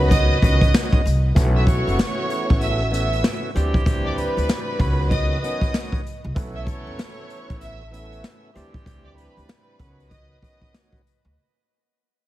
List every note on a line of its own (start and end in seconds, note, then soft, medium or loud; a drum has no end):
0.00 0.34 C#2 loud
0.00 0.38 D#3 loud
0.00 0.38 F#3 medium
0.00 1.03 G#3 medium
0.00 0.38 B3 medium
0.00 0.39 C#4 loud
0.00 1.03 F#4 medium
0.00 1.03 B4 loud
0.10 0.39 D#5 medium
0.10 0.39 D#6 medium
0.10 kick medium
0.10 closed hi-hat medium
0.42 0.70 C#2 loud
0.42 1.01 D#3 loud
0.42 1.01 F#3 medium
0.42 1.02 B3 medium
0.42 1.02 C#4 loud
0.42 0.90 D#5 medium
0.42 0.91 D#6 medium
0.42 kick medium
0.42 closed hi-hat medium
0.61 kick medium
0.61 closed hi-hat medium
0.74 snare loud
0.74 closed hi-hat medium
0.93 1.03 E2 medium
0.93 kick medium
1.06 1.32 C2 loud
1.06 closed hi-hat medium
1.35 1.79 B1 loud
1.35 3.20 C#3 medium
1.35 2.82 E3 loud
1.35 2.82 A3 loud
1.35 3.20 A3 medium
1.35 2.83 B3 medium
1.35 2.83 C#4 loud
1.35 3.20 F#4 loud
1.35 kick loud
1.35 closed hi-hat loud
1.56 1.67 E5 medium
1.56 1.67 E6 medium
1.67 2.57 C#5 medium
1.67 2.58 C#6 medium
1.67 kick loud
1.67 closed hi-hat medium
1.87 1.97 F#1 medium
1.87 closed hi-hat medium
1.99 snare loud
1.99 closed hi-hat loud
2.30 closed hi-hat medium
2.50 3.21 A1 medium
2.50 kick loud
2.61 2.90 E5 medium
2.61 2.90 E6 medium
2.61 closed hi-hat medium
2.91 3.50 E3 loud
2.91 3.51 A3 medium
2.91 3.51 B3 medium
2.91 3.51 C#4 loud
2.91 3.40 E5 medium
2.91 3.40 E6 medium
2.91 closed hi-hat medium
3.13 closed hi-hat medium
3.24 snare loud
3.24 closed hi-hat medium
3.54 4.25 D2 loud
3.54 3.84 E3 loud
3.54 4.48 E3 medium
3.54 3.84 G3 medium
3.54 3.85 C4 medium
3.54 4.48 C4 medium
3.54 3.85 D4 loud
3.54 4.47 G4 loud
3.54 closed hi-hat medium
3.74 kick loud
3.85 4.80 E3 medium
3.85 4.80 G3 medium
3.85 4.80 C4 loud
3.85 4.81 D4 loud
3.85 kick loud
3.85 closed hi-hat medium
4.06 4.17 D5 medium
4.06 4.17 D6 medium
4.18 5.08 B4 medium
4.18 5.09 B5 medium
4.18 closed hi-hat medium
4.37 4.47 D2 medium
4.37 closed hi-hat medium
4.49 snare loud
4.49 closed hi-hat loud
4.78 5.34 C#2 loud
4.78 5.38 D#3 loud
4.78 5.38 F#3 medium
4.78 6.02 G#3 medium
4.78 5.39 B3 medium
4.78 5.39 C#4 loud
4.78 6.02 F#4 medium
4.78 6.03 B4 loud
4.78 kick loud
4.78 open hi-hat medium
5.11 5.39 D#5 medium
5.11 5.39 D#6 medium
5.11 kick loud
5.11 closed hi-hat medium
5.42 6.01 D#3 loud
5.42 6.01 F#3 medium
5.42 6.02 B3 medium
5.42 6.02 C#4 loud
5.42 5.90 D#5 medium
5.42 5.90 D#6 medium
5.42 closed hi-hat medium
5.61 kick medium
5.61 closed hi-hat medium
5.74 snare loud
5.74 closed hi-hat medium
5.92 kick medium
6.06 closed hi-hat medium
6.24 6.35 C2 loud
6.35 6.79 B1 loud
6.35 7.82 E3 loud
6.35 8.20 F#3 medium
6.35 7.82 A3 loud
6.35 7.83 B3 medium
6.35 7.83 C#4 loud
6.35 8.20 E4 loud
6.35 8.20 A4 loud
6.35 kick loud
6.35 closed hi-hat loud
6.55 6.66 E5 medium
6.55 6.67 E6 medium
6.67 7.57 C#5 medium
6.67 7.57 C#6 medium
6.67 kick medium
6.67 closed hi-hat medium
6.87 6.97 F#1 medium
6.99 snare loud
6.99 closed hi-hat loud
7.30 closed hi-hat medium
7.50 8.21 A1 medium
7.50 kick loud
7.50 closed hi-hat medium
7.61 7.89 E5 medium
7.61 7.90 E6 medium
7.61 closed hi-hat medium
7.91 8.50 E3 loud
7.91 8.51 A3 medium
7.91 8.51 B3 medium
7.91 8.51 C#4 loud
7.91 8.40 E5 medium
7.91 8.41 E6 medium
7.91 closed hi-hat medium
8.13 closed hi-hat medium
8.24 snare loud
8.24 closed hi-hat medium
8.54 9.25 D2 loud
8.54 9.46 E3 medium
8.54 8.84 E3 loud
8.54 8.84 G3 medium
8.54 9.46 C4 medium
8.54 8.85 C4 medium
8.54 8.85 D4 loud
8.54 9.46 G4 medium
8.54 closed hi-hat medium
8.74 kick loud
8.85 9.80 E3 medium
8.85 9.80 G3 medium
8.85 9.80 C4 medium
8.85 9.81 D4 loud
8.85 kick loud
8.85 closed hi-hat medium
9.05 9.16 D5 medium
9.05 9.16 D6 medium
9.17 10.07 B4 medium
9.17 10.07 B5 medium
9.17 closed hi-hat medium
9.37 9.47 D2 medium
9.37 closed hi-hat medium
9.49 snare loud
9.49 closed hi-hat loud
9.78 10.33 C#2 loud
9.78 10.38 D#3 loud
9.78 10.38 F#3 medium
9.78 11.02 G#3 medium
9.78 10.39 B3 medium
9.78 10.39 C#4 loud
9.78 11.02 F#4 medium
9.78 11.02 B4 medium
9.78 kick loud
9.78 closed hi-hat medium
10.00 closed hi-hat medium
10.10 10.39 D#5 medium
10.10 10.39 D#6 medium
10.10 kick loud
10.10 closed hi-hat medium
10.42 11.01 D#3 loud
10.42 11.01 F#3 medium
10.42 11.02 B3 medium
10.42 11.02 C#4 loud
10.42 10.90 D#5 medium
10.42 10.91 D#6 medium
10.42 kick medium
10.42 closed hi-hat medium
10.62 kick medium
10.74 snare loud
10.74 closed hi-hat medium
10.93 kick medium
11.07 closed hi-hat medium
11.25 11.35 D2 medium